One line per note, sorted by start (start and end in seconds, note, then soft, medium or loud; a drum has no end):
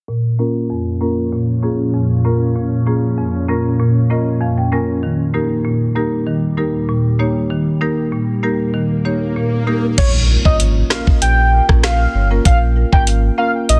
0.08 9.94 A#2 medium
0.08 0.55 A#2 medium
0.08 4.99 F3 medium
0.08 4.99 C#4 medium
0.39 0.52 A#3 medium
0.39 0.52 C#4 medium
0.39 0.52 F4 medium
0.39 0.52 A#4 medium
0.70 1.17 F2 medium
1.01 1.14 A#3 medium
1.01 1.14 C#4 medium
1.01 1.14 F4 medium
1.01 1.14 A#4 medium
1.32 1.79 A#2 medium
1.63 1.76 A#3 medium
1.63 1.76 C#4 medium
1.63 1.76 F4 medium
1.63 1.76 G#4 medium
1.94 2.40 F2 medium
2.24 2.38 A#3 medium
2.24 2.38 C#4 medium
2.24 2.38 F4 medium
2.24 2.38 A#4 medium
2.56 3.02 A#2 medium
2.86 3.00 A#3 medium
2.86 3.00 C#4 medium
2.86 3.00 F4 medium
2.86 3.00 G#4 medium
3.18 3.64 F2 medium
3.48 3.61 A#3 medium
3.48 3.62 C#4 medium
3.48 3.62 F4 medium
3.48 3.62 A#4 medium
3.79 4.26 A#2 medium
4.10 4.23 A#3 medium
4.10 4.23 C#4 medium
4.10 4.23 F4 medium
4.10 4.24 A#4 medium
4.10 4.39 D#5 medium
4.41 4.88 F2 medium
4.41 4.56 F5 medium
4.58 4.71 G5 medium
4.72 4.85 A#3 medium
4.72 4.85 C#4 medium
4.72 4.85 F4 medium
4.72 4.85 A#4 medium
4.72 5.01 G#5 medium
5.03 9.94 D#2 medium
5.03 5.50 D#3 medium
5.03 9.94 G3 medium
5.03 swell medium
5.34 5.47 A#3 medium
5.34 5.47 D#4 medium
5.34 5.47 G4 medium
5.34 5.47 A#4 medium
5.65 6.11 A#2 medium
5.95 6.09 A#3 medium
5.95 6.09 D#4 medium
5.95 6.09 G4 medium
5.95 6.09 A#4 medium
6.27 6.73 D#3 medium
6.57 6.71 A#3 medium
6.57 6.71 D#4 medium
6.57 6.71 G4 medium
6.57 6.71 A#4 medium
6.89 7.35 A#2 medium
7.19 7.32 A#3 medium
7.19 7.33 D#4 medium
7.19 7.33 G4 medium
7.19 7.33 C#5 medium
7.50 7.97 D#3 medium
7.81 7.94 A#3 medium
7.81 7.94 D#4 medium
7.81 7.94 G4 medium
7.81 7.95 A#4 medium
8.12 8.59 A#2 medium
8.43 8.56 A#3 medium
8.43 8.56 D#4 medium
8.43 8.56 G4 medium
8.43 8.57 A#4 medium
8.74 9.21 D#3 medium
9.05 9.18 A#3 medium
9.05 9.18 D#4 medium
9.05 9.18 G4 medium
9.05 9.18 C#5 medium
9.36 9.83 A#2 medium
9.67 9.80 A#3 medium
9.67 9.80 D#4 medium
9.67 9.80 G4 medium
9.67 9.80 A#4 medium
9.98 10.37 A#1 loud
9.98 10.11 C#5 loud
9.98 kick loud
9.98 closed hi-hat medium
9.98 crash medium
9.98 impact medium
10.29 10.35 F4 medium
10.29 10.36 A#4 medium
10.45 10.83 G#1 loud
10.45 10.57 A#3 medium
10.45 10.57 C#4 medium
10.45 10.57 F4 medium
10.45 10.57 C#5 medium
10.45 10.57 D#5 medium
10.45 kick loud
10.60 closed hi-hat medium
10.90 11.04 A#3 medium
10.90 11.04 C#4 medium
10.90 11.04 F4 medium
10.90 11.04 A#4 medium
10.90 11.03 F5 medium
10.90 cross-stick medium
10.90 snare loud
11.07 kick medium
11.22 11.61 A#1 loud
11.22 11.66 G5 loud
11.22 closed hi-hat medium
11.52 11.59 F4 medium
11.52 11.59 A#4 medium
11.69 12.07 A#1 medium
11.69 11.80 A#3 medium
11.69 11.80 C#4 medium
11.69 11.81 F4 medium
11.69 11.81 A#4 medium
11.69 kick medium
11.69 cross-stick loud
11.83 12.28 F5 medium
11.83 cross-stick loud
11.83 snare loud
11.83 closed hi-hat medium
12.14 12.40 G1 medium
12.14 12.21 F4 medium
12.14 12.21 C#5 medium
12.31 12.42 A#3 medium
12.31 12.42 C#4 medium
12.31 12.43 F4 medium
12.31 12.43 A#4 medium
12.45 12.85 A#1 loud
12.45 12.58 F5 loud
12.45 kick loud
12.45 closed hi-hat medium
12.76 12.83 F4 medium
12.76 12.83 A#4 medium
12.92 13.30 G#1 loud
12.92 13.04 A#3 medium
12.92 13.04 C#4 medium
12.92 13.04 F4 medium
12.92 13.04 A#4 medium
12.92 13.04 G5 medium
12.92 kick loud
13.07 closed hi-hat medium
13.38 13.51 A#3 medium
13.38 13.51 C#4 medium
13.38 13.51 F4 medium
13.38 13.51 A#4 medium
13.38 13.51 F5 medium
13.69 13.80 A#1 loud
13.69 13.80 D#5 loud
13.69 closed hi-hat medium